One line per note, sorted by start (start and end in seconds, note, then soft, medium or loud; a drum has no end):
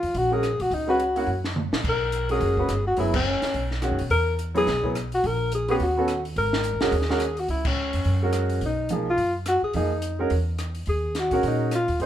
0.00 0.14 E2 medium
0.00 0.19 F4 medium
0.00 open hi-hat soft
0.14 0.56 A#1 medium
0.14 0.35 F#4 loud
0.14 open hi-hat soft
0.31 0.42 G#3 medium
0.31 0.42 C#4 medium
0.31 0.42 F#4 medium
0.31 0.64 G#4 loud
0.31 0.42 A#4 medium
0.43 cross-stick medium
0.43 closed hi-hat soft
0.60 0.70 B1 medium
0.60 0.75 F#4 medium
0.60 open hi-hat soft
0.70 1.25 C#2 medium
0.70 0.89 D#4 medium
0.70 open hi-hat soft
0.87 0.98 G#3 medium
0.87 0.98 C#4 medium
0.87 0.99 F#4 medium
0.87 1.41 F#4 medium
0.87 0.99 B4 medium
1.00 closed hi-hat medium
1.15 1.26 A#3 medium
1.15 1.27 C#4 medium
1.15 1.27 E4 medium
1.15 1.27 F#4 medium
1.15 open hi-hat soft
1.27 1.69 F#2 medium
1.44 snare soft
1.56 mid tom medium
1.72 1.83 A#1 medium
1.72 snare medium
1.84 2.38 B1 medium
1.84 kick medium
1.84 crash medium
1.89 2.29 A#4 medium
2.12 closed hi-hat medium
2.29 2.56 G#3 medium
2.29 2.56 C#4 medium
2.29 2.57 F#4 medium
2.29 2.83 G#4 loud
2.29 2.57 A#4 medium
2.29 open hi-hat soft
2.40 2.67 F#1 medium
2.40 open hi-hat soft
2.57 2.68 G#3 medium
2.57 2.68 C#4 medium
2.57 2.69 F#4 medium
2.57 2.69 B4 medium
2.57 kick medium
2.68 2.95 G1 medium
2.68 cross-stick medium
2.68 closed hi-hat medium
2.87 2.97 F#4 medium
2.97 3.39 F#1 medium
2.97 3.12 F#3 medium
2.97 3.12 B3 medium
2.97 3.13 E4 medium
2.97 3.14 E4 medium
2.97 3.13 G#4 medium
2.97 open hi-hat soft
3.14 3.67 C#4 medium
3.14 kick medium
3.14 crash medium
3.42 muted upright bass stroke soft
3.42 snare soft
3.42 open hi-hat soft
3.54 3.89 B1 medium
3.54 open hi-hat soft
3.71 snare soft
3.82 3.97 D#3 medium
3.82 3.97 G#3 medium
3.82 3.97 C#4 medium
3.82 3.97 F#4 medium
3.82 cross-stick medium
3.82 closed hi-hat soft
3.91 4.00 F#2 medium
3.99 4.09 B2 medium
3.99 open hi-hat soft
4.10 4.64 E2 medium
4.10 4.37 A#4 loud
4.10 open hi-hat soft
4.39 closed hi-hat medium
4.55 4.65 F#3 medium
4.55 4.65 B3 medium
4.55 4.66 E4 medium
4.55 4.66 G#4 medium
4.55 4.93 G#4 loud
4.55 open hi-hat soft
4.67 5.20 B1 medium
4.67 snare soft
4.67 open hi-hat soft
4.83 4.93 F#3 medium
4.83 4.94 B3 medium
4.83 4.94 E4 medium
4.83 4.94 G#4 medium
4.83 kick soft
4.95 cross-stick medium
4.95 closed hi-hat medium
5.12 5.28 F#4 medium
5.12 open hi-hat soft
5.24 5.77 A#1 medium
5.24 5.53 A#4 loud
5.24 open hi-hat soft
5.52 5.69 G#4 medium
5.52 closed hi-hat medium
5.68 5.79 B3 medium
5.68 5.79 C#4 medium
5.68 5.79 F#4 medium
5.68 5.79 G4 medium
5.68 5.76 G#4 medium
5.68 open hi-hat soft
5.80 6.33 D#2 medium
5.80 6.23 F#4 medium
5.80 open hi-hat soft
5.97 6.07 B3 medium
5.97 6.07 C#4 medium
5.97 6.07 F#4 medium
5.97 6.08 A4 medium
6.08 cross-stick medium
6.08 closed hi-hat medium
6.25 open hi-hat soft
6.36 6.71 G#1 medium
6.36 6.84 A#4 medium
6.36 open hi-hat soft
6.53 snare medium
6.64 closed hi-hat medium
6.73 6.82 A#1 medium
6.81 6.91 F#1 medium
6.81 6.91 G#3 medium
6.81 6.91 C#4 medium
6.81 6.92 F#4 medium
6.81 7.41 G#4 loud
6.81 6.92 A#4 medium
6.81 snare medium
6.81 open hi-hat soft
6.92 7.46 D#2 medium
6.92 open hi-hat soft
7.02 snare soft
7.09 7.19 G#3 medium
7.09 7.20 C#4 medium
7.09 7.20 F#4 medium
7.09 7.20 A#4 medium
7.09 snare soft
7.20 cross-stick medium
7.20 closed hi-hat medium
7.37 7.50 F#4 medium
7.37 open hi-hat soft
7.48 7.90 C#2 medium
7.48 7.69 E4 medium
7.48 open hi-hat soft
7.65 8.23 C#4 medium
7.65 kick medium
7.65 crash medium
7.93 8.04 F2 medium
7.93 open hi-hat soft
8.04 8.59 F#2 medium
8.04 open hi-hat soft
8.22 8.59 G#3 medium
8.22 8.60 C#4 medium
8.22 8.60 F#4 medium
8.22 8.60 A#4 medium
8.33 cross-stick medium
8.33 closed hi-hat medium
8.50 open hi-hat soft
8.61 9.15 B1 medium
8.61 open hi-hat soft
8.66 8.90 D#4 medium
8.89 9.05 F3 medium
8.89 9.05 A#3 medium
8.89 9.06 D#4 medium
8.89 9.06 G#4 medium
8.89 closed hi-hat medium
9.10 9.34 F4 loud
9.17 9.59 F#2 medium
9.17 open hi-hat soft
9.46 9.63 F#4 medium
9.46 cross-stick medium
9.46 closed hi-hat medium
9.62 9.74 G#4 medium
9.62 muted upright bass stroke soft
9.73 10.28 F2 medium
9.73 9.89 F3 medium
9.73 9.90 A#3 medium
9.73 9.90 D#4 medium
9.73 10.28 D#4 medium
9.73 9.90 G#4 medium
9.73 open hi-hat soft
10.02 closed hi-hat medium
10.19 10.29 G#3 medium
10.19 10.30 C#4 medium
10.19 10.30 F#4 medium
10.19 10.30 A#4 medium
10.30 10.84 E2 medium
10.30 open hi-hat soft
10.58 cross-stick medium
10.58 closed hi-hat medium
10.75 open hi-hat soft
10.86 11.29 D#2 medium
10.86 11.21 G#4 medium
10.86 open hi-hat soft
11.15 snare soft
11.15 closed hi-hat soft
11.20 11.46 F#4 medium
11.31 11.42 A#2 medium
11.31 11.69 G#3 medium
11.31 11.70 C#4 medium
11.31 11.70 F#4 medium
11.31 11.70 A#4 medium
11.31 kick medium
11.31 open hi-hat soft
11.43 11.85 A#2 medium
11.43 open hi-hat soft
11.48 11.72 D#4 medium
11.71 12.00 F4 loud
11.71 cross-stick medium
11.71 closed hi-hat medium
11.88 11.99 D#2 medium
11.88 open hi-hat soft
12.00 12.06 G#2 medium
12.00 12.06 A#3 medium
12.00 12.06 D#4 medium
12.00 12.06 G#4 medium
12.00 12.06 C5 medium
12.00 open hi-hat soft